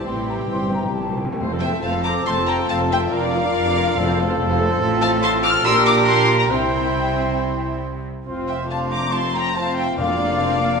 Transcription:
Already playing: viola section C4 E4, violin section G4 C5
0.04 double bass section A1, cello section A2, timpani C3, bassoon E3, french horn section G3 E4, trumpet G4, violin section G5, flute section C6
0.15 timpani C3
0.22 timpani C3
0.28 timpani C3, flute section A#5
0.39 timpani C3
0.46 timpani C3
0.50 double bass section G1, cello section G2, timpani C3, flute section C6
0.62 timpani C3
0.70 timpani C3, flute section A#5
0.85 timpani C3
0.93 double bass section A#1, cello section A#2, timpani C3, flute section A5
1.01 timpani C3
1.09 timpani C3
1.17 timpani C3, flute section G5
1.25 timpani C3
1.32 timpani C3
1.40 double bass section F1, cello section F2, timpani F2, viola section A3 C5, french horn section C4 F4, trumpet A4
1.51 viola section C4 A4
1.60 viola section A3 C5, violin section E5 G5, flute section G5
1.72 viola section C4 A4
1.82 double bass section F1, cello section F2, viola section A3 C5, violin section F5 A5, flute section A5
1.93 viola section C4 A4
2.04 viola section A3 C5, violin section A#5 D6, flute section D6
2.15 viola section C4 A4
2.25 double bass section F1, cello section F2, viola section A3 C5, violin section A5 C6, flute section C6
2.36 viola section C4 A4
2.47 viola section A3 C5, violin section G5 A#5, flute section A#5
2.58 viola section C4 A4
2.68 double bass section F1, cello section F2, viola section A3 C5, violin section F5 A5, flute section A5
2.80 viola section C4 A4
2.90 viola section A3 C5, violin section E5 G5, flute section G5
3.01 viola section C4 A4
3.11 double bass section F1, cello section F2, french horn section D4, viola section F4 A#4, trumpet A#4, violin section D5 F5, flute section F5
3.22 viola section D4 D5
3.33 viola section F4 A#4
3.44 viola section D4 D5
3.53 double bass section F1, cello section F2, viola section F4 A#4
3.65 viola section D4 D5
3.76 viola section F4 A#4
3.86 viola section D4 D5
3.97 double bass section F1, timpani F2, cello section F2, viola section A3 A4, french horn section C4, trumpet A4
4.07 viola section C4 C5
4.18 viola section A3 A4
4.28 viola section C4 C5
4.38 double bass section F1, cello section F2, viola section A3 A4
4.49 viola section C4 C5
4.59 viola section A3 A4
4.70 viola section C4 C5
4.80 double bass section A1, cello section A2, viola section C4 F4, french horn section F4
5.01 violin section F5 A5, flute section A5
5.23 viola section C4 F4, violin section A5 C6, flute section C6
5.43 violin section D6 F6, flute section F6
5.64 double bass section A#1, cello section A#2, french horn section D4 G4, viola section D4 G4, trumpet A#4, violin section C6 E6, flute section E6
5.86 violin section A#5 D6, flute section D6
6.07 viola section F4, violin section A5 C6, flute section C6
6.40 violin section G5 A#5, flute section A#5
6.50 double bass section C2, cello section C3, viola section C4 E4, french horn section C4 E4, trumpet C5, violin section E5 G5, flute section G5
8.26 double bass section F1, cello section F2, viola section C4 F4, french horn section C4 F4, trumpet C5
8.48 violin section E5 G5, flute section G5
8.69 viola section A3 D4, french horn section C4 F4, trumpet C5, violin section F5 A5, flute section A5
8.91 violin section A#5 D6, flute section D6
9.12 viola section C4, french horn section C4 F4, trumpet C5, violin section A5 C6, flute section C6
9.34 violin section G5 A#5, flute section A#5
9.55 viola section C4, french horn section C4 F4, trumpet C5, violin section F5 A5, flute section A5
9.77 violin section E5 G5, flute section G5
9.98 double bass section F1, timpani F2, cello section F2, viola section A#3 D4, french horn section A#3 F4, trumpet D5, violin section D5 F5, flute section F5
10.20 viola section D4
10.40 viola section C4
10.62 viola section A#3

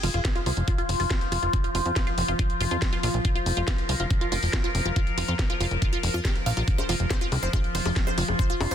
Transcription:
Already playing: synth drone F3 F4
0.03 analog synth bass F1, synth arpeggio sound F4, open hi-hat
0.14 analog synth bass F1, synth arpeggio sound F4, closed hi-hat
0.25 kick, snare, closed hi-hat
0.36 synth arpeggio sound F4, closed hi-hat
0.46 analog synth bass C2, synth arpeggio sound F4, open hi-hat
0.57 analog synth bass F1, closed hi-hat
0.68 synth arpeggio sound F4, kick, closed hi-hat
0.78 synth arpeggio sound F4, closed hi-hat
0.89 analog synth bass F1, open hi-hat
1.00 analog synth bass F1, synth arpeggio sound F4, open hi-hat
1.11 synth arpeggio sound F4, kick, snare, closed hi-hat
1.21 closed hi-hat
1.32 analog synth bass F1, synth arpeggio sound F4, open hi-hat
1.43 analog synth bass F1, synth arpeggio sound F4, closed hi-hat
1.53 kick, closed hi-hat
1.64 synth arpeggio sound F4, closed hi-hat
1.75 analog synth bass F1, synth arpeggio sound F4, open hi-hat
1.86 analog synth bass F2, closed hi-hat
1.96 synth arpeggio sound F4, kick, snare, closed hi-hat
2.07 synth arpeggio sound F4, closed hi-hat
2.18 analog synth bass F1, open hi-hat
2.28 analog synth bass F1, synth arpeggio sound F4, closed hi-hat
2.39 synth arpeggio sound F4, kick, closed hi-hat
2.50 closed hi-hat
2.60 analog synth bass F1, synth arpeggio sound F4, open hi-hat
2.71 analog synth bass F2, synth arpeggio sound F4, closed hi-hat
2.82 kick, snare, closed hi-hat
2.93 synth arpeggio sound F4, closed hi-hat
3.03 analog synth bass A#1, synth arpeggio sound F4, open hi-hat
3.14 analog synth bass A#1, closed hi-hat
3.25 synth arpeggio sound F4, synth drone A#4, kick, closed hi-hat
3.35 synth arpeggio sound F4, closed hi-hat
3.46 analog synth bass F1, open hi-hat
3.57 analog synth bass F1, synth arpeggio sound F4, closed hi-hat
3.68 synth arpeggio sound F4, kick, snare, closed hi-hat
3.78 closed hi-hat
3.89 analog synth bass C2, synth arpeggio sound F4, open hi-hat
4.00 analog synth bass F1, synth arpeggio sound F4, closed hi-hat
4.11 kick, closed hi-hat
4.21 synth arpeggio sound F4, closed hi-hat
4.32 analog synth bass F1, synth arpeggio sound F4, open hi-hat
4.43 analog synth bass F1, open hi-hat
4.53 synth arpeggio sound F4, kick, snare, closed hi-hat
4.64 synth arpeggio sound F4, closed hi-hat
4.75 analog synth bass F1, open hi-hat
4.86 analog synth bass F1, synth arpeggio sound F4, closed hi-hat
4.96 synth arpeggio sound F4, kick, closed hi-hat
5.07 closed hi-hat
5.18 analog synth bass F1, synth arpeggio sound F4, open hi-hat
5.28 analog synth bass F2, synth arpeggio sound F4, closed hi-hat
5.39 kick, snare, closed hi-hat
5.50 synth arpeggio sound F4, closed hi-hat
5.61 analog synth bass F1, synth arpeggio sound F4, open hi-hat
5.71 analog synth bass F1, closed hi-hat
5.82 synth arpeggio sound F4, kick, closed hi-hat
5.93 synth arpeggio sound F4, closed hi-hat
6.03 analog synth bass F1, open hi-hat
6.14 analog synth bass F2, synth arpeggio sound F4
6.25 synth arpeggio sound G4, kick, snare, closed hi-hat
6.36 closed hi-hat
6.46 analog synth bass A#1, synth arpeggio sound F5, open hi-hat
6.57 analog synth bass A#1, synth arpeggio sound F4, closed hi-hat
6.68 synth drone F4, kick, closed hi-hat
6.78 synth arpeggio sound C5, closed hi-hat, high bongo
6.89 analog synth bass F1, synth arpeggio sound F4, open hi-hat
7.00 analog synth bass F1, closed hi-hat
7.11 synth arpeggio sound C5, kick, snare, closed hi-hat, high bongo
7.21 synth arpeggio sound F4, closed hi-hat
7.32 analog synth bass C2, open hi-hat, high bongo
7.43 analog synth bass F1, synth arpeggio sound C5, closed hi-hat
7.53 synth arpeggio sound F4, kick, closed hi-hat, high bongo
7.64 closed hi-hat
7.75 analog synth bass F1, synth arpeggio sound C5, open hi-hat
7.86 analog synth bass F1, synth arpeggio sound F4, open hi-hat, high bongo
7.96 kick, snare, closed hi-hat
8.07 synth arpeggio sound C5, closed hi-hat, high bongo
8.18 analog synth bass F1, synth arpeggio sound F4, open hi-hat
8.28 analog synth bass F1, closed hi-hat, high bongo
8.39 synth arpeggio sound C5, kick, closed hi-hat
8.50 synth arpeggio sound F4, closed hi-hat
8.61 analog synth bass F1, open hi-hat, high bongo
8.71 analog synth bass F2, synth arpeggio sound C5, closed hi-hat

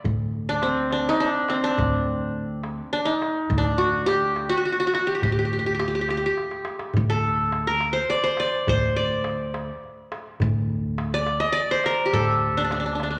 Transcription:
Already playing: qanun D5
0.04 upright bass D2, darbuka dum
0.34 darbuka ka
0.49 qanun D4
0.62 qanun C4, darbuka tek
0.91 qanun D4, darbuka tek
1.09 qanun D#4
1.20 qanun D4, darbuka ka
1.48 qanun C4, darbuka tek
1.64 qanun D4
1.78 upright bass D2, darbuka dum
2.07 darbuka ka
2.63 darbuka tek
2.93 qanun D4, darbuka ka
3.05 qanun D#4
3.22 darbuka tek
3.50 upright bass D2, darbuka dum
3.58 qanun D4
3.78 qanun F#4, darbuka ka
4.06 qanun G4, darbuka tek
4.36 darbuka tek
4.49 qanun F#4
4.57 qanun F#4
4.65 qanun F#4, darbuka ka
4.72 qanun F#4
4.80 qanun F#4
4.87 qanun F#4
4.94 qanun F#4, darbuka tek
5.07 qanun G4
5.15 qanun G4
5.22 upright bass D2, qanun G4, darbuka dum
5.32 qanun G4
5.39 qanun G4
5.45 qanun G4
5.52 qanun G4, darbuka ka
5.59 qanun G4
5.66 qanun G4
5.75 qanun G4
5.79 qanun G4, darbuka tek
5.88 qanun G4
5.95 qanun G4
6.01 qanun G4
6.09 qanun G4, darbuka tek
6.17 qanun G4
6.26 qanun G4
6.37 darbuka tek
6.51 darbuka ka
6.65 darbuka tek
6.79 darbuka ka
6.94 upright bass D2, darbuka dum
7.10 qanun A4
7.24 darbuka ka
7.52 darbuka tek
7.67 qanun A#4
7.81 darbuka tek
7.93 qanun C5
8.09 qanun D5, darbuka ka
8.24 qanun C5
8.37 qanun D5, darbuka tek
8.67 upright bass D2, qanun C5, darbuka dum
8.96 qanun D5, darbuka ka
9.24 darbuka tek
9.54 darbuka tek
9.83 darbuka ka
10.12 darbuka tek
10.40 upright bass D2, darbuka dum
10.70 darbuka ka
10.98 darbuka tek
11.14 qanun D5
11.26 darbuka tek
11.40 qanun D#5
11.52 qanun D5, darbuka ka
11.71 qanun C5
11.84 qanun A#4, darbuka tek
12.06 qanun G4
12.13 upright bass D2, qanun A4, darbuka dum
12.42 darbuka ka
12.57 qanun D4
12.64 qanun D4
12.71 qanun D4, darbuka tek
12.80 qanun D4
12.86 qanun D4
12.95 qanun D4
13.00 qanun D4, darbuka tek
13.11 qanun D4

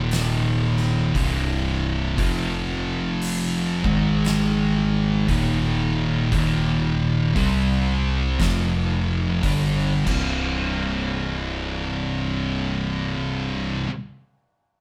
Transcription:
Already playing: picked electric bass D#1, distorted electric guitar D#2 A#2 D#3
0.11 snare, open hi-hat
0.77 snare
1.14 picked electric bass C1, distorted electric guitar C2 G2 C3, kick, open hi-hat
2.17 picked electric bass F1, distorted electric guitar F2 C3 F3, kick, open hi-hat
3.22 open hi-hat
3.84 picked electric bass G#1, distorted electric guitar G#2 D#3 G#3, kick
4.25 snare, open hi-hat
5.28 picked electric bass D#1, distorted electric guitar D#2 A#2 D#3, kick, open hi-hat
6.31 picked electric bass D#1, distorted electric guitar D#2 A#2 D#3, kick, open hi-hat
7.35 picked electric bass C2, distorted electric guitar C3 G3 C4, kick, open hi-hat
8.40 picked electric bass F1, distorted electric guitar F2 C3 F3, kick, snare, open hi-hat
9.43 picked electric bass G1, distorted electric guitar G2 D3 G3, kick, open hi-hat
10.05 picked electric bass C1, distorted electric guitar C2 G2, kick, crash
10.09 distorted electric guitar C3

